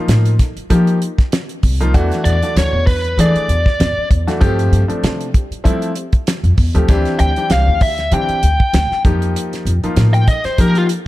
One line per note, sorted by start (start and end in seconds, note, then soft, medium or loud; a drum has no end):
0.00 0.32 F3 medium
0.00 0.33 A#3 medium
0.00 0.32 D#4 medium
0.00 0.32 F4 medium
0.08 0.37 A2 medium
0.08 snare loud
0.08 closed hi-hat medium
0.25 closed hi-hat soft
0.39 0.48 D#4 soft
0.39 0.47 A4 soft
0.39 kick medium
0.39 snare soft
0.39 closed hi-hat medium
0.56 muted upright bass stroke soft
0.56 closed hi-hat soft
0.70 0.99 F3 medium
0.70 0.97 F3 medium
0.70 0.97 A#3 medium
0.70 0.97 D#4 medium
0.70 0.97 G4 medium
0.70 kick medium
0.70 closed hi-hat medium
0.87 closed hi-hat soft
1.01 1.09 D#4 soft
1.01 1.09 F4 soft
1.01 closed hi-hat medium
1.19 kick medium
1.19 snare soft
1.19 closed hi-hat soft
1.32 snare loud
1.32 closed hi-hat medium
1.49 closed hi-hat soft
1.63 1.92 C2 medium
1.63 kick medium
1.63 open hi-hat medium
1.80 1.92 F3 medium
1.80 1.92 A#3 medium
1.80 1.92 D#4 medium
1.80 1.92 F4 medium
1.80 closed hi-hat soft
1.94 2.10 E2 medium
1.94 2.34 E3 loud
1.94 2.34 A3 loud
1.94 2.34 D4 loud
1.94 2.34 F#4 loud
1.94 kick loud
1.94 closed hi-hat medium
2.12 snare soft
2.12 closed hi-hat soft
2.24 2.41 E2 medium
2.24 2.55 D5 medium
2.24 closed hi-hat medium
2.43 2.81 E3 medium
2.43 2.81 A3 medium
2.43 2.81 D4 medium
2.43 2.81 F#4 medium
2.43 closed hi-hat soft
2.56 2.72 D2 medium
2.56 2.86 C#5 medium
2.56 snare loud
2.56 closed hi-hat medium
2.73 3.14 E2 medium
2.87 2.96 D4 soft
2.87 2.96 F#4 soft
2.87 3.17 B4 medium
2.87 kick medium
2.87 open hi-hat medium
3.04 closed hi-hat soft
3.17 3.33 E3 medium
3.17 3.45 E3 medium
3.17 3.45 A3 medium
3.17 3.45 D4 medium
3.17 3.45 G#4 medium
3.17 4.08 D5 medium
3.17 closed hi-hat medium
3.35 muted upright bass stroke soft
3.35 closed hi-hat soft
3.48 3.64 E2 medium
3.48 3.57 D4 soft
3.48 3.57 F#4 soft
3.48 closed hi-hat medium
3.66 kick medium
3.66 snare soft
3.80 3.95 E2 medium
3.80 snare loud
3.80 closed hi-hat medium
3.97 muted upright bass stroke soft
4.10 4.26 E2 medium
4.10 kick medium
4.10 closed hi-hat medium
4.27 4.39 E3 medium
4.27 4.39 A3 medium
4.27 4.39 D4 medium
4.27 4.39 F#4 medium
4.27 snare soft
4.27 closed hi-hat soft
4.41 4.70 G2 loud
4.41 4.81 F3 loud
4.41 4.81 A3 loud
4.41 4.81 C4 loud
4.41 4.81 G4 loud
4.41 kick medium
4.41 closed hi-hat medium
4.59 closed hi-hat soft
4.72 4.88 G2 medium
4.72 closed hi-hat medium
4.88 5.27 F3 medium
4.88 5.27 A3 medium
4.88 5.27 C4 medium
4.88 5.27 D4 medium
4.88 muted upright bass stroke soft
4.88 closed hi-hat soft
5.03 5.31 C3 medium
5.03 snare loud
5.03 closed hi-hat medium
5.21 closed hi-hat soft
5.34 5.42 C4 soft
5.34 5.42 G4 soft
5.34 kick medium
5.34 closed hi-hat medium
5.50 muted upright bass stroke soft
5.50 closed hi-hat soft
5.64 5.91 F3 medium
5.64 5.94 G3 medium
5.64 5.91 A3 medium
5.64 5.91 C4 medium
5.64 5.91 E4 loud
5.64 kick medium
5.64 closed hi-hat medium
5.82 closed hi-hat soft
5.96 6.04 C4 soft
5.96 6.04 G4 soft
5.96 closed hi-hat medium
6.13 kick medium
6.13 closed hi-hat soft
6.27 snare loud
6.27 closed hi-hat medium
6.44 6.56 F2 medium
6.44 closed hi-hat soft
6.57 6.73 E2 medium
6.57 kick medium
6.57 open hi-hat medium
6.74 6.87 D2 medium
6.74 6.86 F3 medium
6.74 6.87 A3 medium
6.74 6.87 C4 medium
6.74 6.87 G4 medium
6.74 closed hi-hat soft
6.88 7.04 D2 medium
6.88 7.29 E3 loud
6.88 7.29 C4 loud
6.88 7.29 D4 loud
6.88 7.29 G4 loud
6.88 kick loud
6.88 closed hi-hat medium
7.05 snare soft
7.05 closed hi-hat soft
7.19 7.35 D2 medium
7.19 7.50 G5 medium
7.19 closed hi-hat medium
7.36 7.75 E3 medium
7.36 7.75 C4 medium
7.36 7.75 D4 medium
7.36 7.75 G4 medium
7.36 closed hi-hat soft
7.50 7.66 C2 medium
7.50 7.81 F5 medium
7.50 snare loud
7.50 closed hi-hat medium
7.67 8.08 D2 medium
7.81 7.90 D4 soft
7.81 7.90 G4 soft
7.81 8.12 E5 medium
7.81 kick medium
7.81 open hi-hat medium
7.98 snare soft
7.98 closed hi-hat soft
8.11 8.27 D3 medium
8.11 8.39 E3 medium
8.11 8.39 C4 medium
8.11 8.38 D4 medium
8.11 8.39 G4 medium
8.11 9.01 G5 medium
8.11 closed hi-hat medium
8.29 muted upright bass stroke soft
8.29 closed hi-hat soft
8.43 8.58 D2 medium
8.43 closed hi-hat medium
8.60 kick medium
8.73 8.89 D2 loud
8.73 snare loud
8.73 closed hi-hat medium
8.91 muted upright bass stroke soft
8.91 snare soft
9.05 9.33 F2 medium
9.05 9.70 F3 medium
9.05 9.70 A#3 medium
9.05 9.70 D#4 medium
9.05 9.70 G4 medium
9.05 kick loud
9.05 closed hi-hat medium
9.22 closed hi-hat soft
9.36 closed hi-hat medium
9.53 snare soft
9.53 closed hi-hat soft
9.65 9.81 F2 medium
9.65 closed hi-hat medium
9.83 10.21 F3 medium
9.83 10.21 A#3 medium
9.83 10.21 D#4 medium
9.83 10.21 F4 medium
9.83 muted upright bass stroke soft
9.83 closed hi-hat soft
9.96 10.25 A2 medium
9.96 snare loud
9.96 closed hi-hat medium
10.14 10.27 G5 medium
10.14 closed hi-hat soft
10.28 10.36 D#4 soft
10.28 10.36 A4 soft
10.28 10.45 D#5 medium
10.28 kick medium
10.28 closed hi-hat medium
10.44 10.61 C5 medium
10.44 muted upright bass stroke soft
10.44 snare soft
10.44 closed hi-hat soft
10.58 10.87 F3 medium
10.58 10.85 F3 medium
10.58 10.85 A#3 medium
10.58 10.85 D#4 medium
10.58 10.85 G4 medium
10.58 10.76 A#4 medium
10.58 kick medium
10.58 closed hi-hat medium
10.75 10.85 F4 medium
10.75 closed hi-hat soft
10.89 closed hi-hat medium